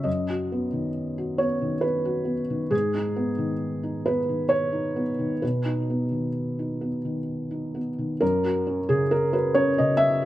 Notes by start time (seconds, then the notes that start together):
0.04 F#2 D#5
0.30 F#4
0.52 B3
0.73 D#3
1.18 F#4
1.38 B3 C#5
1.62 D#3
1.81 B4
2.05 F#4
2.25 B3
2.50 D#3
2.71 G#2 G#4
2.95 D#4
3.16 B3
3.38 D#3
3.83 D#4
4.06 B3 B4
4.29 D#3
4.49 C#5
4.72 D#4
4.96 B3
5.19 D#3
5.42 B2 B4
5.65 D#4
5.90 B3
6.11 D#3
6.59 D#4
6.81 B3
7.05 D#3
7.51 D#4
7.75 B3
7.99 D#3
8.21 F#2 A#4
8.44 F#4
8.67 C#4
8.89 C#3 G#4
9.11 A#4
9.33 F#4 B4
9.54 C#4 C#5
9.78 C#3 D#5
9.97 E5
10.22 F#4